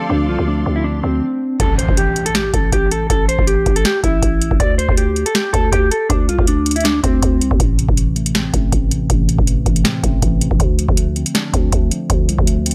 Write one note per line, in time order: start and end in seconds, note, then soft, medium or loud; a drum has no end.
0.00 0.09 D3 medium
0.00 0.29 F3 medium
0.00 0.47 A3 medium
0.00 0.67 C4 medium
0.00 0.28 D4 medium
0.00 1.20 A4 medium
0.00 1.20 D5 medium
0.00 1.20 F5 medium
0.00 1.18 C6 medium
0.09 0.30 D2 loud
0.09 1.03 D3 medium
0.09 0.25 D4 medium
0.29 0.38 C2 loud
0.29 1.22 F3 medium
0.29 0.45 F4 medium
0.39 0.65 D2 loud
0.47 1.41 A3 medium
0.47 0.75 D4 medium
0.66 1.02 D2 loud
0.66 1.02 C4 medium
0.76 0.83 E4 medium
0.84 1.00 D4 medium
0.84 1.60 D4 medium
1.03 1.22 D2 loud
1.03 1.56 C4 medium
1.03 1.60 C4 medium
1.60 1.87 A1 loud
1.60 1.76 A4 medium
1.60 kick loud
1.60 closed hi-hat medium
1.60 impact medium
1.78 1.94 C5 medium
1.78 closed hi-hat medium
1.89 2.51 A1 loud
1.89 kick loud
1.97 2.24 G4 medium
1.97 closed hi-hat medium
2.16 closed hi-hat soft
2.26 2.33 A4 medium
2.26 closed hi-hat medium
2.35 2.51 G4 medium
2.35 snare loud
2.35 closed hi-hat medium
2.54 2.72 A1 loud
2.54 2.70 A4 medium
2.54 kick medium
2.54 closed hi-hat medium
2.72 3.08 A1 loud
2.72 2.89 G4 medium
2.72 kick medium
2.72 closed hi-hat medium
2.91 3.07 A4 medium
2.91 closed hi-hat medium
3.10 3.37 A1 loud
3.10 3.26 A4 medium
3.10 kick loud
3.10 closed hi-hat medium
3.29 3.44 C5 medium
3.29 closed hi-hat medium
3.39 3.65 A1 loud
3.39 kick loud
3.47 3.74 G4 medium
3.47 closed hi-hat medium
3.66 3.84 A1 loud
3.66 kick loud
3.66 closed hi-hat soft
3.76 3.83 A4 medium
3.76 closed hi-hat medium
3.85 4.01 G4 medium
3.85 snare loud
3.85 closed hi-hat medium
4.04 4.22 A1 loud
4.04 4.57 E4 medium
4.04 kick medium
4.04 closed hi-hat medium
4.22 4.50 A1 loud
4.22 kick medium
4.22 closed hi-hat medium
4.42 closed hi-hat medium
4.51 4.59 A1 loud
4.51 kick loud
4.60 4.87 D2 loud
4.60 4.76 D5 medium
4.60 kick loud
4.60 closed hi-hat medium
4.78 4.94 C5 medium
4.78 closed hi-hat medium
4.89 5.25 D2 loud
4.89 kick loud
4.97 5.24 G4 medium
4.97 closed hi-hat medium
5.16 closed hi-hat soft
5.26 5.33 A4 medium
5.26 closed hi-hat medium
5.35 5.51 G4 medium
5.35 snare loud
5.35 closed hi-hat medium
5.53 5.72 D2 loud
5.53 5.69 A4 medium
5.53 kick medium
5.53 closed hi-hat medium
5.72 5.90 D2 loud
5.72 5.88 G4 medium
5.72 kick medium
5.72 closed hi-hat medium
5.91 6.07 A4 medium
5.91 closed hi-hat medium
6.09 6.30 D2 loud
6.09 6.25 D4 medium
6.09 kick loud
6.09 closed hi-hat medium
6.29 6.38 C2 loud
6.29 6.45 F4 medium
6.29 closed hi-hat medium
6.39 7.01 D2 loud
6.39 kick loud
6.47 6.75 D4 medium
6.47 closed hi-hat medium
6.66 closed hi-hat medium
6.71 closed hi-hat medium
6.76 6.83 E4 medium
6.76 closed hi-hat medium
6.80 7.00 D4 medium
6.80 closed hi-hat soft
6.85 snare loud
6.85 closed hi-hat medium
7.03 7.22 D2 loud
7.03 7.56 C4 medium
7.03 kick medium
7.03 closed hi-hat medium
7.22 7.43 D2 loud
7.22 kick medium
7.22 closed hi-hat medium
7.41 7.51 C2 loud
7.41 closed hi-hat medium
7.51 7.59 D2 loud
7.51 kick loud
7.60 7.87 A1 loud
7.60 8.54 A2 medium
7.60 kick loud
7.60 closed hi-hat medium
7.78 8.72 C3 medium
7.78 closed hi-hat medium
7.89 8.51 A1 loud
7.89 kick loud
7.97 8.71 E3 medium
7.97 closed hi-hat medium
8.16 8.52 A3 medium
8.16 closed hi-hat soft
8.26 closed hi-hat medium
8.35 9.29 C4 loud
8.35 snare loud
8.35 closed hi-hat medium
8.54 8.72 A1 loud
8.54 9.47 A3 medium
8.54 kick medium
8.54 closed hi-hat medium
8.72 9.08 A1 loud
8.72 9.46 E3 medium
8.72 kick medium
8.72 closed hi-hat medium
8.91 9.27 C3 medium
8.91 closed hi-hat medium
9.10 9.37 A1 loud
9.10 10.03 A2 medium
9.10 kick loud
9.10 closed hi-hat medium
9.28 10.22 C3 medium
9.28 closed hi-hat medium
9.39 9.65 A1 loud
9.39 kick loud
9.47 10.21 E3 medium
9.47 closed hi-hat medium
9.65 9.84 A1 loud
9.65 10.02 A3 medium
9.65 kick loud
9.65 closed hi-hat soft
9.76 closed hi-hat medium
9.84 10.59 C4 loud
9.84 snare loud
9.84 closed hi-hat medium
10.04 10.22 A1 loud
10.04 10.60 A3 medium
10.04 kick medium
10.04 closed hi-hat medium
10.22 10.50 A1 loud
10.22 10.60 E3 medium
10.22 kick medium
10.22 closed hi-hat medium
10.41 10.60 C3 medium
10.41 closed hi-hat medium
10.51 10.59 A1 loud
10.51 kick loud
10.59 10.87 D2 loud
10.59 11.53 D3 medium
10.59 kick loud
10.59 closed hi-hat medium
10.79 11.72 F3 medium
10.79 closed hi-hat medium
10.89 11.25 D2 loud
10.89 kick loud
10.97 11.71 A3 medium
10.97 closed hi-hat medium
11.16 11.52 C4 medium
11.16 closed hi-hat soft
11.26 closed hi-hat medium
11.34 12.28 D4 loud
11.34 snare loud
11.34 closed hi-hat medium
11.53 11.72 D2 loud
11.53 12.47 C4 medium
11.53 kick medium
11.53 closed hi-hat medium
11.72 11.90 D2 loud
11.72 12.46 A3 medium
11.72 kick medium
11.72 closed hi-hat medium
11.91 12.27 F3 medium
11.91 closed hi-hat medium
12.09 12.30 D2 loud
12.09 12.75 D3 medium
12.09 kick loud
12.09 closed hi-hat medium
12.29 12.38 C2 loud
12.29 12.75 F3 medium
12.29 closed hi-hat medium
12.39 12.75 D2 loud
12.39 kick loud
12.47 12.75 A3 medium
12.47 closed hi-hat medium
12.66 12.75 C4 medium
12.66 closed hi-hat medium
12.71 closed hi-hat medium